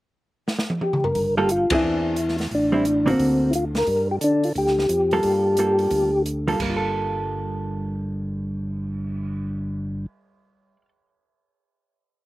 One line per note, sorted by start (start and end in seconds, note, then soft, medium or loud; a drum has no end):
0.48 snare medium
0.59 snare medium
0.70 high tom medium
0.81 1.04 G4 medium
0.81 high tom medium
0.93 mid tom medium
1.04 1.35 A#4 medium
1.04 floor tom medium
1.15 1.67 G1 medium
1.15 kick soft
1.15 open hi-hat soft
1.37 1.48 G3 medium
1.37 1.48 A#3 medium
1.37 1.48 F4 medium
1.37 1.51 G4 medium
1.37 1.48 A4 medium
1.49 1.73 F4 medium
1.49 closed hi-hat soft
1.70 1.77 G1 soft
1.70 2.15 E3 medium
1.70 2.15 C4 medium
1.70 2.15 D4 medium
1.70 2.15 G#4 medium
1.70 kick medium
1.70 ride medium
1.74 2.36 E4 medium
1.83 2.47 E2 medium
2.16 closed hi-hat soft
2.29 snare soft
2.38 snare soft
2.38 open hi-hat soft
2.51 3.15 A1 medium
2.51 3.10 D4 medium
2.51 kick soft
2.51 open hi-hat soft
2.72 2.83 G3 medium
2.72 2.84 C4 medium
2.72 2.84 E4 medium
2.85 closed hi-hat medium
3.06 3.50 D3 medium
3.06 3.50 A#3 medium
3.06 3.50 C4 medium
3.06 3.51 F#4 medium
3.06 open hi-hat soft
3.10 3.53 C4 medium
3.19 3.84 D2 medium
3.19 kick soft
3.19 open hi-hat soft
3.51 3.53 E4 medium
3.51 closed hi-hat medium
3.55 3.65 F4 medium
3.75 4.08 A#4 loud
3.75 snare medium
3.75 open hi-hat soft
3.87 4.19 G2 medium
3.87 kick soft
3.87 open hi-hat soft
4.11 4.16 G4 medium
4.21 4.53 D3 medium
4.21 4.45 D4 medium
4.21 closed hi-hat medium
4.44 4.50 F4 medium
4.44 open hi-hat soft
4.55 4.87 D2 medium
4.55 6.22 G4 loud
4.55 kick soft
4.55 open hi-hat soft
4.67 snare soft
4.79 snare soft
4.89 5.21 F2 medium
4.89 closed hi-hat medium
5.11 5.55 G3 medium
5.11 5.55 A#3 medium
5.11 5.56 F4 medium
5.11 5.55 A4 medium
5.11 open hi-hat soft
5.23 5.88 G2 medium
5.23 kick soft
5.23 open hi-hat soft
5.57 6.09 G3 medium
5.57 6.09 A#3 medium
5.57 6.09 F4 medium
5.57 6.10 A4 medium
5.57 closed hi-hat medium
5.79 open hi-hat soft
5.91 6.55 D2 medium
5.91 kick soft
5.91 open hi-hat soft
6.26 closed hi-hat soft
6.48 6.51 G3 medium
6.48 6.58 A#3 medium
6.48 6.58 F4 medium
6.48 6.59 A4 medium
6.48 open hi-hat soft
6.52 10.76 G3 medium
6.60 10.06 G1 medium
6.60 10.81 A#3 medium
6.60 kick soft
6.60 crash medium
6.70 10.85 F4 medium
6.77 10.88 A4 medium
6.82 cymbal swell soft